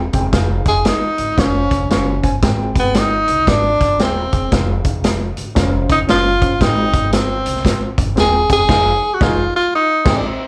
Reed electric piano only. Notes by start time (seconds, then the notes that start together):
0.13 C4 G#4 G5
0.32 D#4 G#4 F5
1.37 C#4 C5 F5
1.90 C#4 C5 F5
2.22 C#4 C5 G#5
2.42 G#3 C4 G#4 G5
3.99 C4 G#4 G5
4.33 C4 G#4 G5
4.51 D#4 G#4 F5
5.55 C#4 C5 F5
6.08 C#4 C5 F5
6.41 C#4 C5 F5
6.59 G#3 C4 G#4 G5
8.16 C4 G#4 G5
8.49 C4 G#4 G5
8.69 D#4 G#4 F5
9.21 D#4 G#4 F5
10.05 G#2 C4 G#4 G5